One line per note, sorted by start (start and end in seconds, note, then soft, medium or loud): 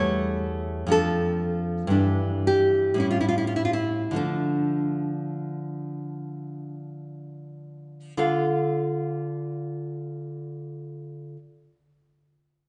0.00 0.86 E2 medium
0.00 0.87 G3 medium
0.00 0.88 A3 medium
0.00 0.88 C#5 loud
0.87 1.87 F2 medium
0.87 1.88 F3 medium
0.87 1.89 D4 medium
0.92 2.42 A4 loud
1.87 2.94 G2 medium
1.87 2.95 E3 medium
1.87 2.96 D4 medium
2.47 2.98 G4 loud
2.94 4.10 A2 medium
2.94 4.11 G3 medium
2.94 4.12 C#4 medium
3.00 3.09 E4 medium
3.11 3.19 F4 medium
3.21 3.28 E4 medium
3.29 3.37 F4 medium
3.38 3.46 E4 medium
3.47 3.55 F4 medium
3.56 3.64 E4 medium
3.65 3.73 F4 medium
3.73 4.15 E4 medium
4.11 8.12 D3 medium
4.11 8.13 F3 soft
4.11 8.14 A3 soft
4.16 6.74 D4 medium
8.17 11.36 D3 medium
8.17 11.37 F4 medium
8.17 11.37 A4 medium
8.17 11.38 D5 medium
8.17 11.38 F5 medium